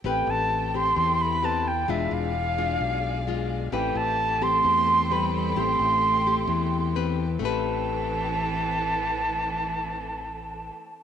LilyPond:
<<
  \new Staff \with { instrumentName = "Flute" } { \time 4/4 \key a \minor \tempo 4 = 131 g''8 a''4 c'''4 b''8 a''8 g''8 | e''8 f''2. r8 | g''8 a''4 c'''4. b''8 b''8 | c'''2. r4 |
a''1~ | a''1 | }
  \new Staff \with { instrumentName = "String section" } { \time 4/4 \key a \minor <c' g' a' g''>1 | <gis' d'' f''>1 | <c' g' a' g''>1~ | <c' g' a' g''>1 |
<c' a' b' g''>1~ | <c' a' b' g''>1 | }
  \new Staff \with { instrumentName = "Nylon-string guitar" } { \time 4/4 \key a \minor << { <c' g' b'>4. <c' g'>4. <c' g' b'>8 r8 | <gis d' f'>4 r8 <gis d' f'>4. <gis d' f'>4 | <c' g' b'>4. <c' g'>4. <c' g' b'>4 | <c' g'>4. <c' g'>4. <c' g' b'>8 r8 |
<a c' g' b'>1~ | <a c' g' b'>1 | } \\ { a2 e2 | e2 b,2 | a2 e2 | a2 e2 |
r1 | r1 | } >> }
  \new Staff \with { instrumentName = "Cello" } { \clef bass \time 4/4 \key a \minor r1 | r1 | e8 e4 a4. g8 g8 | a2. r4 |
e1~ | e1 | }
  \new Staff \with { instrumentName = "Fingered electric bass" } { \clef bass \time 4/4 \key a \minor a,,8 a,,4. e,2 | e,,8 e,,4. b,,2 | a,,8 a,,4. e,2 | a,,8 a,,4. e,2 |
a,,1~ | a,,1 | }
>>